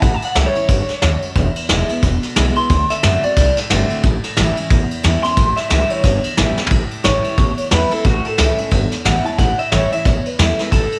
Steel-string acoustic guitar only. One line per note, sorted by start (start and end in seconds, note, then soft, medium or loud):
0.03 0.67 A2 medium
0.35 0.55 E3 loud
0.35 0.55 G3 medium
0.35 0.55 C#4 medium
0.35 0.54 E4 loud
0.55 0.69 C#4 soft
0.55 0.68 E4 medium
0.69 1.01 G2 medium
1.03 1.35 F#2 medium
1.36 2.00 E2 medium
1.69 1.89 D3 medium
1.69 1.89 G#3 loud
1.69 1.89 B3 medium
1.69 1.88 E4 medium
1.89 2.03 B3 medium
1.89 2.02 E4 medium
2.03 2.67 B2 medium
2.36 2.56 D3 medium
2.36 2.56 G#3 medium
2.36 2.56 B3 medium
2.36 2.55 E4 medium
2.56 2.70 B3 medium
2.56 2.69 E4 medium
2.70 3.02 D3 medium
3.03 3.22 D3 loud
3.03 3.23 A3 loud
3.03 3.23 C4 loud
3.03 3.23 F#4 medium
3.24 3.37 C4 soft
3.24 3.37 F#4 medium
3.37 4.01 A2 medium
3.70 4.02 D3 loud
3.70 4.03 A3 medium
3.70 4.03 C4 medium
3.70 4.03 F#4 loud
4.04 4.68 A2 medium
4.37 4.56 E3 loud
4.37 4.56 G3 loud
4.37 4.57 C#4 loud
4.37 4.56 E4 loud
4.57 4.71 C#4 medium
4.57 4.70 E4 medium
4.71 5.35 E2 loud
5.03 5.23 E3 loud
5.03 5.23 G3 medium
5.03 5.23 C#4 loud
5.03 5.22 E4 medium
5.23 5.37 C#4 medium
5.23 5.37 E4 medium
5.37 6.01 A2 loud
5.70 6.03 E3 loud
5.70 6.03 G3 medium
5.70 6.03 C#4 loud
5.70 6.04 E4 medium
6.04 6.68 E2 medium
6.37 6.70 E3 medium
6.37 6.70 G3 medium
6.37 6.70 C#4 medium
6.37 6.70 E4 loud
6.71 7.35 A2 medium
7.04 7.36 E3 medium
7.04 7.36 G3 medium
7.04 7.37 C#4 medium
7.04 7.37 E4 medium
7.38 8.02 E2 medium
7.71 7.90 E3 medium
7.71 7.91 G3 loud
7.71 7.91 C#4 medium
7.71 7.90 E4 medium
7.91 8.05 C#4 soft
7.91 8.04 E4 medium
8.05 8.69 A2 loud
8.38 8.57 E3 medium
8.38 8.58 G3 medium
8.38 8.58 C#4 loud
8.38 8.57 E4 loud
8.58 8.72 C#4 medium
8.58 8.71 E4 medium
8.71 9.36 E2 loud
9.05 9.24 E3 medium
9.05 9.24 G3 loud
9.05 9.25 C#4 medium
9.05 9.23 E4 loud
9.24 9.39 C#4 medium
9.24 9.38 E4 medium
9.39 10.03 A2 loud
9.72 9.91 E3 medium
9.72 9.91 G3 medium
9.72 9.91 C#4 medium
9.72 9.91 E4 loud
9.92 10.06 C#4 soft
9.92 10.05 E4 medium
10.06 10.70 E2 loud
10.39 10.58 E3 medium
10.39 10.58 G3 medium
10.39 10.59 C#4 loud
10.39 10.58 E4 loud
10.59 10.73 C#4 medium
10.59 10.72 E4 medium
10.73 10.99 A2 medium